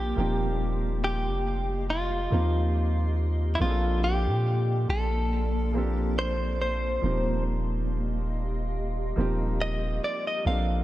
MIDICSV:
0, 0, Header, 1, 5, 480
1, 0, Start_track
1, 0, Tempo, 857143
1, 101, Time_signature, 4, 2, 24, 8
1, 6069, End_track
2, 0, Start_track
2, 0, Title_t, "Ambient pad"
2, 0, Program_c, 0, 92
2, 0, Note_on_c, 0, 58, 75
2, 0, Note_on_c, 0, 74, 73
2, 0, Note_on_c, 0, 81, 71
2, 0, Note_on_c, 0, 84, 81
2, 81, Note_off_c, 0, 81, 0
2, 82, Note_off_c, 0, 58, 0
2, 82, Note_off_c, 0, 74, 0
2, 99, Note_on_c, 0, 77, 67
2, 100, Note_on_c, 0, 67, 77
2, 100, Note_on_c, 0, 75, 69
2, 2001, Note_off_c, 0, 67, 0
2, 2001, Note_off_c, 0, 75, 0
2, 2001, Note_off_c, 0, 77, 0
2, 2020, Note_on_c, 0, 58, 75
2, 2020, Note_on_c, 0, 74, 67
2, 2020, Note_on_c, 0, 81, 68
2, 3921, Note_off_c, 0, 58, 0
2, 3921, Note_off_c, 0, 74, 0
2, 3921, Note_off_c, 0, 81, 0
2, 3940, Note_on_c, 0, 75, 67
2, 3941, Note_on_c, 0, 67, 74
2, 3941, Note_on_c, 0, 77, 68
2, 5841, Note_off_c, 0, 75, 0
2, 5842, Note_off_c, 0, 67, 0
2, 5842, Note_off_c, 0, 77, 0
2, 5860, Note_on_c, 0, 58, 72
2, 5860, Note_on_c, 0, 74, 70
2, 5860, Note_on_c, 0, 81, 68
2, 6069, Note_off_c, 0, 58, 0
2, 6069, Note_off_c, 0, 74, 0
2, 6069, Note_off_c, 0, 81, 0
2, 6069, Note_off_c, 0, 84, 0
2, 6069, End_track
3, 0, Start_track
3, 0, Title_t, "Clean electric guitar"
3, 0, Program_c, 1, 27
3, 0, Note_on_c, 1, 67, 93
3, 578, Note_off_c, 1, 67, 0
3, 584, Note_on_c, 1, 67, 86
3, 1040, Note_off_c, 1, 67, 0
3, 1065, Note_on_c, 1, 65, 72
3, 1761, Note_off_c, 1, 65, 0
3, 1989, Note_on_c, 1, 64, 64
3, 2023, Note_off_c, 1, 64, 0
3, 2025, Note_on_c, 1, 65, 77
3, 2260, Note_off_c, 1, 65, 0
3, 2263, Note_on_c, 1, 67, 84
3, 2742, Note_off_c, 1, 67, 0
3, 2744, Note_on_c, 1, 69, 95
3, 3248, Note_off_c, 1, 69, 0
3, 3248, Note_on_c, 1, 67, 95
3, 3462, Note_off_c, 1, 67, 0
3, 3465, Note_on_c, 1, 72, 106
3, 3698, Note_off_c, 1, 72, 0
3, 3705, Note_on_c, 1, 72, 108
3, 4160, Note_off_c, 1, 72, 0
3, 5384, Note_on_c, 1, 75, 102
3, 5622, Note_off_c, 1, 75, 0
3, 5624, Note_on_c, 1, 74, 97
3, 5751, Note_off_c, 1, 74, 0
3, 5753, Note_on_c, 1, 75, 95
3, 5862, Note_off_c, 1, 75, 0
3, 5864, Note_on_c, 1, 77, 98
3, 6064, Note_off_c, 1, 77, 0
3, 6069, End_track
4, 0, Start_track
4, 0, Title_t, "Grand piano"
4, 0, Program_c, 2, 0
4, 0, Control_c, 2, 64, 127
4, 0, Note_on_c, 2, 53, 75
4, 0, Note_on_c, 2, 58, 66
4, 0, Note_on_c, 2, 60, 64
4, 0, Note_on_c, 2, 62, 66
4, 0, Note_on_c, 2, 67, 78
4, 89, Note_off_c, 2, 53, 0
4, 89, Note_on_c, 2, 53, 73
4, 96, Note_off_c, 2, 58, 0
4, 96, Note_on_c, 2, 58, 67
4, 102, Note_off_c, 2, 60, 0
4, 102, Note_on_c, 2, 60, 67
4, 108, Control_c, 2, 64, 0
4, 108, Note_on_c, 2, 63, 66
4, 109, Note_off_c, 2, 67, 0
4, 111, Note_off_c, 2, 62, 0
4, 114, Note_on_c, 2, 67, 82
4, 207, Control_c, 2, 64, 127
4, 968, Note_off_c, 2, 53, 0
4, 971, Note_off_c, 2, 58, 0
4, 975, Note_off_c, 2, 60, 0
4, 978, Note_off_c, 2, 63, 0
4, 981, Note_off_c, 2, 67, 0
4, 1290, Note_on_c, 2, 53, 72
4, 1296, Note_on_c, 2, 58, 66
4, 1303, Note_on_c, 2, 60, 67
4, 1308, Note_on_c, 2, 63, 68
4, 1315, Note_on_c, 2, 67, 81
4, 1950, Note_off_c, 2, 53, 0
4, 1953, Note_off_c, 2, 58, 0
4, 1956, Note_off_c, 2, 60, 0
4, 1959, Note_off_c, 2, 63, 0
4, 1963, Note_off_c, 2, 67, 0
4, 2010, Note_on_c, 2, 53, 71
4, 2016, Note_on_c, 2, 58, 63
4, 2022, Note_on_c, 2, 60, 68
4, 2029, Control_c, 2, 64, 0
4, 2029, Note_on_c, 2, 62, 65
4, 2034, Note_on_c, 2, 68, 64
4, 2067, Note_off_c, 2, 68, 0
4, 2072, Note_on_c, 2, 69, 78
4, 2115, Control_c, 2, 64, 127
4, 2889, Note_off_c, 2, 53, 0
4, 2891, Note_off_c, 2, 58, 0
4, 2895, Note_off_c, 2, 60, 0
4, 2898, Note_off_c, 2, 62, 0
4, 2919, Note_off_c, 2, 69, 0
4, 3210, Note_on_c, 2, 53, 70
4, 3216, Note_on_c, 2, 58, 67
4, 3222, Note_on_c, 2, 60, 66
4, 3229, Note_on_c, 2, 62, 62
4, 3235, Note_on_c, 2, 69, 83
4, 3870, Note_off_c, 2, 53, 0
4, 3873, Note_off_c, 2, 58, 0
4, 3876, Note_off_c, 2, 60, 0
4, 3880, Note_off_c, 2, 62, 0
4, 3883, Note_off_c, 2, 69, 0
4, 3930, Note_on_c, 2, 53, 69
4, 3936, Note_on_c, 2, 58, 64
4, 3942, Note_on_c, 2, 60, 65
4, 3947, Control_c, 2, 64, 0
4, 3949, Note_on_c, 2, 63, 64
4, 3955, Note_on_c, 2, 67, 74
4, 4032, Control_c, 2, 64, 127
4, 4808, Note_off_c, 2, 53, 0
4, 4812, Note_off_c, 2, 58, 0
4, 4814, Note_off_c, 2, 60, 0
4, 4818, Note_off_c, 2, 63, 0
4, 4821, Note_off_c, 2, 67, 0
4, 5129, Note_on_c, 2, 53, 84
4, 5136, Note_on_c, 2, 58, 76
4, 5142, Note_on_c, 2, 60, 76
4, 5148, Note_on_c, 2, 63, 76
4, 5155, Note_on_c, 2, 67, 91
4, 5790, Note_off_c, 2, 53, 0
4, 5793, Note_off_c, 2, 58, 0
4, 5796, Note_off_c, 2, 60, 0
4, 5799, Note_off_c, 2, 63, 0
4, 5803, Note_off_c, 2, 67, 0
4, 5850, Note_on_c, 2, 53, 69
4, 5856, Note_on_c, 2, 58, 66
4, 5862, Note_on_c, 2, 60, 63
4, 5868, Control_c, 2, 64, 0
4, 5869, Note_on_c, 2, 62, 69
4, 5875, Note_on_c, 2, 69, 80
4, 5964, Control_c, 2, 64, 127
4, 6069, Note_off_c, 2, 53, 0
4, 6069, Note_off_c, 2, 58, 0
4, 6069, Note_off_c, 2, 60, 0
4, 6069, Note_off_c, 2, 62, 0
4, 6069, Note_off_c, 2, 69, 0
4, 6069, End_track
5, 0, Start_track
5, 0, Title_t, "808-style bass"
5, 0, Program_c, 3, 38
5, 0, Note_on_c, 3, 34, 103
5, 78, Note_off_c, 3, 34, 0
5, 101, Note_on_c, 3, 27, 102
5, 711, Note_on_c, 3, 29, 98
5, 720, Note_off_c, 3, 27, 0
5, 1279, Note_off_c, 3, 29, 0
5, 1301, Note_on_c, 3, 39, 104
5, 1998, Note_off_c, 3, 39, 0
5, 2020, Note_on_c, 3, 34, 105
5, 2391, Note_on_c, 3, 46, 97
5, 2400, Note_off_c, 3, 34, 0
5, 2724, Note_off_c, 3, 46, 0
5, 2740, Note_on_c, 3, 34, 94
5, 3918, Note_off_c, 3, 34, 0
5, 3940, Note_on_c, 3, 27, 107
5, 5118, Note_off_c, 3, 27, 0
5, 5139, Note_on_c, 3, 27, 102
5, 5601, Note_off_c, 3, 27, 0
5, 5860, Note_on_c, 3, 34, 110
5, 6069, Note_off_c, 3, 34, 0
5, 6069, End_track
0, 0, End_of_file